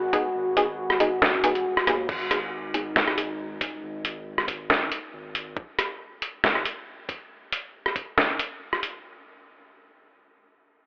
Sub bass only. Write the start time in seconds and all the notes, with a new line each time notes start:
Already playing: G#1
0.13 D#1
0.35 G#1
1.44 A1
1.65 D#1
1.87 D#2
2.09 G#1
3.61 D#1
3.83 G#1
5.13 G#1